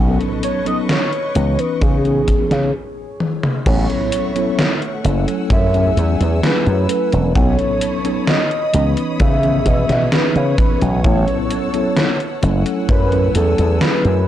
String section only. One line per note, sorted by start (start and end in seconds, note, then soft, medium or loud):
0.00 2.72 B4 medium
0.00 2.72 D#5 medium
0.00 1.35 A5 medium
0.00 2.72 C#6 medium
3.66 7.32 A3 medium
3.66 5.03 E5 medium
3.66 7.32 F#5 medium
3.66 5.03 C#6 medium
5.04 7.33 G#5 medium
5.04 7.33 E6 medium
7.36 8.73 C#5 medium
7.36 8.73 A5 medium
7.36 11.01 B5 medium
7.36 11.01 D#6 medium
8.74 12.39 C#5 medium
11.04 14.28 F#5 medium
11.04 12.42 A5 medium
11.04 12.42 E6 medium
12.43 14.28 A3 medium
12.43 14.28 G#5 medium
12.43 14.28 E6 medium